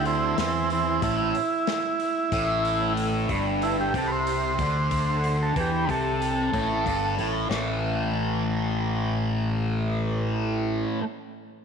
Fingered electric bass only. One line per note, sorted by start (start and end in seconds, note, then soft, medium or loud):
0.00 0.34 D2 medium
0.38 0.99 E2 medium
1.02 1.32 A1 medium
2.32 3.25 A1 medium
3.29 3.90 G1 medium
3.94 4.55 C2 medium
4.59 5.52 D2 medium
5.56 5.86 E2 medium
5.89 6.49 C2 medium
6.53 6.83 A1 medium
6.86 7.16 G1 medium
7.18 7.48 A1 medium
7.50 10.84 A1 medium